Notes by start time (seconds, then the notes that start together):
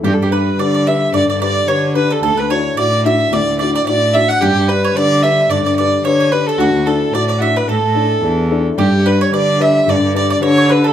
0.03 G2 G3 G4
0.14 A4
0.20 G2 G4
0.31 D4 G4 B4
0.59 D3 D4 G4 B4 D5
0.75 D5
0.86 D4 G4 B4 E5
1.13 G2 D3 D5
1.29 G2 D5
1.40 D4 G4 B4 D5
1.68 D3 D4 G4 B4 C#5
1.95 D4 G4 B4
2.10 A4
2.23 D2 D3 A4
2.37 D2 B4
2.49 D4 E4 F#4 C#5
2.77 A2 D4 E4 F#4 D5
3.05 D4 E4 F#4 E5
3.32 D2 A2 D5
3.47 D2
3.59 D4 E4 F#4 D5
3.75 D5
3.87 A2 D4 E4 F#4 D5
4.14 D4 E4 F#4 E5
4.29 F#5
4.41 G2 G3 G4
4.57 G2
4.69 D4 G4 B4
4.84 C#5
4.96 D3 D4 G4 B4 D5
5.23 D4 G4 B4 E5
5.50 G2 D3 D5
5.64 G2 D5
5.76 D4 G4 B4 D5
6.04 D3 D4 G4 B4 C#5
6.20 C#5
6.32 D4 G4 B4
6.47 A4
6.58 D2 D3 F#4
6.74 D2
6.86 D4 E4 F#4 A4
7.13 A2 D4 E4 F#4 D5
7.28 D5
7.38 D4 E4 F#4 E5 F#5
7.56 B4
7.68 A2 A3 A4
7.83 A2
7.95 D4 E4 A4
8.23 E2 D4 E4 A4
8.50 D4 E4 A4
8.78 G2 G3 G4
8.93 G2
9.05 D4 G4 B4
9.21 C#5
9.32 D3 D4 G4 B4 D5
9.59 D4 G4 B4 E5
9.86 G2 D3 D5
10.03 G2
10.14 D4 G4 B4 D5
10.30 D5
10.41 D3 D4 G4 B4 C#5
10.58 C#5
10.68 D4 G4 B4
10.84 A4